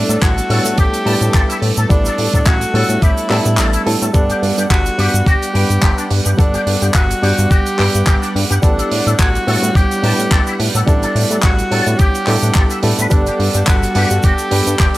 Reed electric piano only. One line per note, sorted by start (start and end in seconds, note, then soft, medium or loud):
0.00 0.47 G3 medium
0.00 0.47 B3 medium
0.00 0.47 D4 medium
0.00 0.47 E4 medium
0.00 0.48 A4 loud
0.50 1.03 G3 medium
0.50 1.03 B3 medium
0.50 1.03 D4 medium
0.50 1.03 E4 medium
0.50 1.03 C#5 medium
1.05 1.87 G3 medium
1.05 1.87 B3 medium
1.05 1.87 D4 medium
1.05 1.87 E4 medium
1.05 1.88 B4 medium
1.90 2.71 G3 medium
1.90 2.71 B3 medium
1.90 2.71 D4 medium
1.90 2.72 E4 medium
1.90 2.72 A4 loud
2.73 3.27 G3 medium
2.73 3.27 B3 medium
2.73 3.27 D4 medium
2.73 3.27 E4 medium
2.73 3.27 C#5 medium
3.30 3.83 G3 medium
3.30 3.83 B3 medium
3.30 3.83 D4 medium
3.30 3.84 E4 medium
3.30 3.84 A4 loud
3.86 4.11 G3 medium
3.86 4.11 B3 medium
3.86 4.11 D4 medium
3.86 4.11 E4 medium
3.86 4.12 A4 medium
4.14 4.95 G3 medium
4.14 4.95 B3 medium
4.14 4.96 D4 medium
4.14 4.96 A4 medium
4.14 4.96 F#5 medium
4.98 5.51 G3 medium
4.98 5.51 B3 medium
4.98 5.51 D4 medium
4.98 5.52 D5 medium
4.98 5.52 F#5 medium
5.54 6.35 G3 medium
5.54 6.36 B3 medium
5.54 6.36 D4 medium
5.54 6.36 B4 medium
6.38 7.19 G3 medium
6.38 7.19 B3 medium
6.38 7.20 D4 medium
6.38 7.20 A4 loud
6.38 7.20 F#5 medium
7.22 7.76 G3 medium
7.22 7.76 B3 medium
7.22 7.76 D4 medium
7.22 7.76 D5 medium
7.22 7.76 F#5 medium
7.78 8.59 G3 medium
7.78 8.60 B3 medium
7.78 8.60 D4 medium
7.78 8.60 B4 medium
8.62 9.44 G3 medium
8.62 9.44 B3 medium
8.62 9.44 D4 medium
8.62 9.44 E4 medium
8.62 9.45 A4 loud
9.47 10.00 G3 medium
9.47 10.00 B3 medium
9.47 10.00 D4 medium
9.47 10.00 E4 medium
9.47 10.01 C#5 medium
10.03 10.84 G3 medium
10.03 10.84 B3 medium
10.03 10.84 D4 medium
10.03 10.85 E4 medium
10.03 10.85 B4 medium
10.87 11.68 G3 medium
10.87 11.68 B3 medium
10.87 11.68 D4 medium
10.87 11.69 E4 medium
10.87 11.69 A4 loud
11.71 12.24 G3 medium
11.71 12.24 B3 medium
11.71 12.25 D4 medium
11.71 12.25 E4 medium
11.71 12.25 C#5 medium
12.27 12.80 G3 medium
12.27 12.80 B3 medium
12.27 12.80 D4 medium
12.27 12.81 E4 medium
12.27 12.81 A4 loud
12.83 13.08 G3 medium
12.83 13.08 B3 medium
12.83 13.08 D4 medium
12.83 13.08 E4 medium
12.83 13.09 A4 medium
13.10 13.92 G3 medium
13.10 13.92 B3 medium
13.10 13.92 D4 medium
13.10 13.93 A4 loud
13.10 13.93 F#5 medium
13.95 14.48 G3 medium
13.95 14.49 B3 medium
13.95 14.49 D4 medium
13.95 14.49 D5 medium
13.95 14.49 F#5 medium
14.51 14.98 G3 medium
14.51 14.98 B3 medium
14.51 14.98 D4 medium
14.51 14.98 B4 medium